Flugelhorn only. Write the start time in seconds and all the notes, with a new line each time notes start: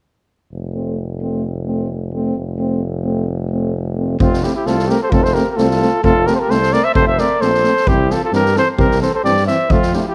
4.20 C4
4.42 E4
4.54 E4
4.66 F4
4.88 G4
5.01 A4
5.10 F4
5.23 A4
5.33 G4
5.50 G4
5.56 F4
6.02 F4
6.26 G4
6.37 G4 A4
6.49 A4
6.73 A#4
6.85 C5
6.95 A4
7.07 C5
7.18 A#4
7.42 A4
7.88 E4
8.11 F4
8.24 F4
8.33 G4
8.56 A4
8.78 G4
9.01 A4
9.14 A4
9.24 G4
9.46 C5
9.70 C4
9.93 D4 E4
9.99 E4
10.05 E4